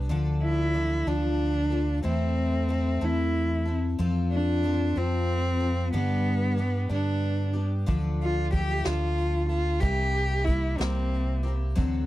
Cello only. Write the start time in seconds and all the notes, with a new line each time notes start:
0.43 E4
1.07 D4
2.05 C4
3.04 E4
4.32 D4
4.98 C4
5.93 B3
6.92 D4
8.22 F4
8.54 G4
8.85 F4
9.49 F4
9.80 G4
10.44 E4
10.77 C4